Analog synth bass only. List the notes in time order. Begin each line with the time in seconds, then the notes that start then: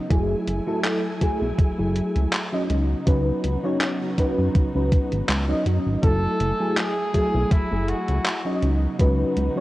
0.10 F#1
0.48 F#1
1.42 B1
1.59 F#1
1.79 F#1
2.16 C#2
2.70 C#2
3.07 C#2
3.44 C#2
4.38 F#2
4.75 C#2
5.12 G#1
5.29 C#2
5.66 F#2
5.86 G#1
6.03 F#1
6.40 F#1
7.35 B1
7.51 F#1
7.72 F#1
8.08 C#2
8.63 C#2
9.00 C#2
9.37 C#2